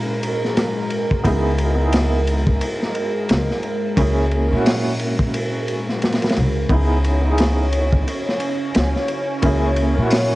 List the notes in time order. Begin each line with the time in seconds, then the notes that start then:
Already playing: A#2 G#3 A#3 C#4 E4 F#4 G#4 A#4
0.23 ride
0.45 snare
0.57 snare, ride
0.90 ride
1.11 kick
1.23 C#2 B3 D#4 E4, kick, ride
1.28 G#4
1.58 ride
1.75 B3 D#4
1.81 E4 G#4
1.93 snare, ride
2.27 ride
2.47 kick
2.61 ride
2.82 snare
2.95 ride
3.29 C#2, snare, ride
3.50 snare
3.63 ride
3.96 C#2 A#3 C#4 E4, kick, ride
4.01 G#4
4.31 ride
4.48 A#3 C#4
4.52 A#2 E4
4.57 F#4
4.66 snare, open hi-hat
4.99 ride
5.19 kick
5.34 ride
5.68 ride
5.89 snare
6.02 snare, ride
6.12 snare, ride
6.22 snare, ride
6.29 snare, ride
6.36 C#2, ride
6.69 C#2 B3 C#4 D#4 E4 C#5, kick, ride
6.73 G#4
7.04 ride
7.21 B3 D#4
7.27 E4 G#4
7.38 snare, ride
7.73 ride
7.92 kick
8.07 ride
8.29 snare
8.40 ride
8.75 C#2, snare, ride
8.96 snare
9.08 ride
9.42 C#2 A#3 C#4 E4, kick, ride
9.46 G#4
9.76 ride
9.94 A#2 A#3 C#4
10.00 E4 F#4
10.11 snare, open hi-hat